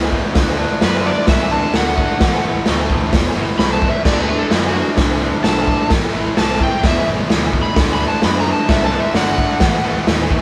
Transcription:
Already playing: picked electric bass C#2, distorted electric guitar B2 E3
0.11 distorted electric guitar E2 B2 E3, kick
0.34 picked electric bass D2, distorted electric guitar D3 A3 D4, kick, snare, open hi-hat
0.57 distorted electric guitar D3 A3 D4
0.81 picked electric bass F#2, distorted electric guitar D3 A3 D4, electric slide guitar B4, snare, open hi-hat
1.03 distorted electric guitar D3 A3 D4, electric slide guitar D5
1.27 picked electric bass C2, distorted electric guitar D3 A3 D4, electric slide guitar E5, kick, snare, open hi-hat
1.51 distorted electric guitar D3 A3 D4, electric slide guitar A5
1.74 picked electric bass D2, distorted electric guitar D3 A3 D4, electric slide guitar F#5, snare, open hi-hat
1.96 distorted electric guitar D3 A3 D4, kick
2.19 picked electric bass A1, distorted electric guitar A2 E3 A3, kick, snare, open hi-hat
2.43 picked electric bass A1, distorted electric guitar A2 E3 A3
2.66 picked electric bass D2, distorted electric guitar A2 E3 A3, snare, open hi-hat
2.89 distorted electric guitar A2 E3 A3, kick
3.12 picked electric bass E1, distorted electric guitar E2 B2 E3, kick, snare, open hi-hat
3.35 picked electric bass G1, distorted electric guitar E2 B2 E3
3.59 picked electric bass C2, distorted electric guitar E2 B2 E3, electric slide guitar B5, snare, open hi-hat
3.73 electric slide guitar A5
3.81 distorted electric guitar E2 B2 E3, kick
3.90 electric slide guitar E5
4.04 picked electric bass D2, distorted electric guitar D3 A3 D4, electric slide guitar D5, kick, snare, crash
4.21 electric slide guitar B4
4.28 distorted electric guitar D3 A3 D4
4.38 electric slide guitar A4
4.50 picked electric bass F#2, distorted electric guitar D3 A3 D4, electric slide guitar E4, snare, open hi-hat
4.68 electric slide guitar F#4
4.73 distorted electric guitar D3 A3 D4
4.97 picked electric bass C2, distorted electric guitar D3 A3 D4, kick, snare, open hi-hat
5.19 distorted electric guitar D3 A3 D4
5.42 picked electric bass B1, distorted electric guitar D3 A3 D4, electric slide guitar A5, snare, open hi-hat
5.65 distorted electric guitar D3 A3 D4, kick
5.89 picked electric bass A1, distorted electric guitar A2 E3 A3, kick, snare, open hi-hat
6.12 picked electric bass A1, distorted electric guitar A2 E3 A3
6.35 picked electric bass C2, distorted electric guitar A2 E3 A3, electric slide guitar A5, snare, open hi-hat
6.58 distorted electric guitar A2 E3 A3, kick
6.63 electric slide guitar G5
6.82 picked electric bass E1, distorted electric guitar E2 B2 E3, kick, snare, open hi-hat
6.86 electric slide guitar E5
7.04 picked electric bass G1, distorted electric guitar E2 B2 E3
7.28 distorted electric guitar E2 B2 E3, snare, open hi-hat
7.32 picked electric bass D2
7.51 distorted electric guitar E2 B2 E3, kick
7.63 electric slide guitar B5
7.75 picked electric bass D2, distorted electric guitar D3 A3 D4, kick, snare, open hi-hat
7.95 distorted electric guitar D3, electric slide guitar B5
7.99 distorted electric guitar A3 D4
8.09 electric slide guitar A5
8.21 picked electric bass F#2, distorted electric guitar D3 A3 D4, electric slide guitar B5, snare, open hi-hat
8.40 electric slide guitar A#5
8.44 distorted electric guitar D3 A3 D4
8.53 electric slide guitar A5
8.67 picked electric bass C2, distorted electric guitar D3 A3 D4, electric slide guitar E5, kick, snare, open hi-hat
8.84 electric slide guitar A5
8.90 distorted electric guitar D3 A3 D4
8.99 electric slide guitar E5
9.14 picked electric bass G1, distorted electric guitar D3 A3 D4, electric slide guitar F#5, snare, open hi-hat
9.37 distorted electric guitar D3 A3 D4, kick
9.60 picked electric bass A1, distorted electric guitar A2 E3 A3, kick, snare, open hi-hat
9.83 picked electric bass A1, distorted electric guitar A2 E3 A3
10.06 picked electric bass D#2, distorted electric guitar A2 E3 A3, snare, open hi-hat
10.29 distorted electric guitar A2 E3 A3, kick

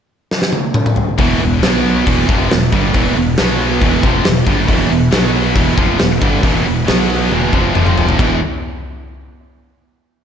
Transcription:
0.31 snare
0.42 snare
0.52 high tom
0.74 mid tom
0.86 mid tom
0.96 floor tom
1.18 fingered electric bass E1, distorted electric guitar E2 B2 E3, tonewheel organ E4 B4 F#5, kick, open hi-hat
1.40 fingered electric bass E1, distorted electric guitar E2 B2
1.62 fingered electric bass B1, distorted electric guitar B2 F#3 B3, tonewheel organ B3 F#4 C#5, snare, open hi-hat
2.06 fingered electric bass E1, distorted electric guitar E2 B2 E3, tonewheel organ E4 B4 F#5, kick, open hi-hat
2.29 fingered electric bass F1, distorted electric guitar F2 C3 F3, kick
2.51 fingered electric bass E1, distorted electric guitar E2 B2, snare, open hi-hat
2.72 fingered electric bass G1, distorted electric guitar G2 D3 G3, kick
2.93 fingered electric bass E1, distorted electric guitar E2 B2 E3, kick, open hi-hat
3.16 fingered electric bass E1, distorted electric guitar E2 B2
3.36 fingered electric bass B1, distorted electric guitar B2 F#3 B3, tonewheel organ B3 F#4 C#5, snare, open hi-hat
3.80 fingered electric bass E1, distorted electric guitar E2 B2 E3, tonewheel organ E4 B4 F#5, kick, open hi-hat
4.03 fingered electric bass F1, distorted electric guitar F2 C3 F3, kick
4.25 fingered electric bass E1, distorted electric guitar E2 B2, snare, open hi-hat
4.46 fingered electric bass G1, distorted electric guitar G2 D3 G3, kick
4.68 fingered electric bass E1, distorted electric guitar E2 B2 E3, kick, open hi-hat
4.89 fingered electric bass E1, distorted electric guitar E2 B2
5.11 fingered electric bass B1, distorted electric guitar B2 F#3 B3, tonewheel organ B3 F#4 C#5, snare, open hi-hat
5.54 fingered electric bass E1, distorted electric guitar E2 B2 E3, tonewheel organ E4 B4 F#5, kick, open hi-hat
5.75 fingered electric bass F1, distorted electric guitar F2 C3 F3, kick
5.99 fingered electric bass E1, distorted electric guitar E2 B2, snare, open hi-hat
6.21 fingered electric bass G1, distorted electric guitar G2 D3 G3, kick
6.43 fingered electric bass E1, distorted electric guitar E2 B2 E3, kick, open hi-hat
6.65 fingered electric bass E1, distorted electric guitar E2 B2
6.87 fingered electric bass B1, distorted electric guitar B2 F#3 B3, tonewheel organ B3 F#4 C#5, snare, open hi-hat
7.31 fingered electric bass E1, distorted electric guitar E2 B2 E3, tonewheel organ E4 B4 F#5, high tom
7.53 fingered electric bass F1, distorted electric guitar F2 C3 F3, kick
7.75 fingered electric bass F1, distorted electric guitar F2 C3 F3, tonewheel organ F4 C5 G5, mid tom
7.87 mid tom
7.98 floor tom
8.09 floor tom
8.17 fingered electric bass E1, distorted electric guitar E2 B2 E3, tonewheel organ F#5, kick, crash
8.21 tonewheel organ E4 B4

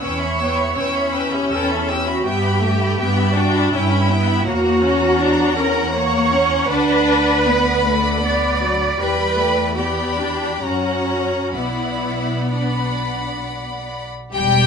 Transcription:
0.00 double bass section E2, viola section C#4, violin section B4 G5 E6, cello section C#5
0.20 violin section E5 B5
0.39 viola section B3, violin section B4 G5 E6
0.57 violin section E5 B5
0.76 double bass section E2, viola section C#4, violin section B4 G5 E6
0.94 violin section E5 B5
1.13 violin section B4 G5 E6, cello section B4
1.32 cello section G4, violin section E5 B5
1.51 double bass section E2, cello section A4, violin section B4 G5 E6
1.70 violin section E5 B5
1.89 cello section G4, violin section B4 G5 E6
2.06 cello section F#4, violin section E5 B5
2.25 double bass section G2, viola section B3, cello section G4, violin section E5 G5
2.43 violin section E5 G5 B5
2.62 viola section A3, violin section E5 G5
2.79 violin section E5 G5 B5
2.98 double bass section G2, viola section B3, violin section E5 G5
3.16 violin section E5 G5 B5
3.34 viola section D4, cello section F#4, violin section E5 G5
3.52 violin section E5 G5 B5
3.71 double bass section G2, viola section C#4, cello section E4, violin section E5 G5
3.89 violin section E5 G5 B5
4.08 viola section B3, violin section E5 G5
4.27 violin section E5 G5 B5
4.46 double bass section E2, viola section A#3, cello section F#4, violin section C#5 F#5 A#5
4.83 viola section C#4
5.20 viola section D4
5.57 viola section C#4, cello section A#4
5.94 viola section A#3, cello section C#5
6.32 viola section C#4
6.69 double bass section D2, viola section D4, cello section B4, violin section D5 B5
7.47 viola section B3
7.86 viola section A3
8.25 viola section B3, cello section D5
8.62 viola section F#3
9.00 double bass section E2, viola section G3, cello section B4, violin section D5 G5 B5
9.37 viola section A3
9.77 viola section B3, cello section G4, violin section D5 G5 B5
10.19 viola section D4
10.62 double bass section F#2, viola section C#4, cello section F#4, violin section C#5 F#5 A#5
11.55 double bass section B1, viola section B3, cello section E4, violin section D5 F#5 B5
12.51 cello section D4, violin section D5 F#5 B5
14.33 double bass section E1, cello section G3, violin section G4 G5

